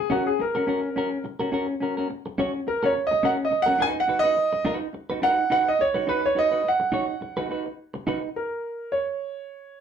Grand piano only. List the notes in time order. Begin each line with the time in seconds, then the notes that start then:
Already playing: G#4
0.12 F#4
0.27 G#4
0.41 A#4
2.68 A#4
2.85 C#5
3.07 D#5
3.25 F#5
3.45 D#5
3.62 F#5
3.82 G#5
4.00 F#5
4.19 D#5
5.23 F#5
5.52 F#5
5.68 D#5
5.81 C#5
6.09 B4
6.26 C#5
6.39 D#5
6.68 F#5
8.36 A#4
8.92 C#5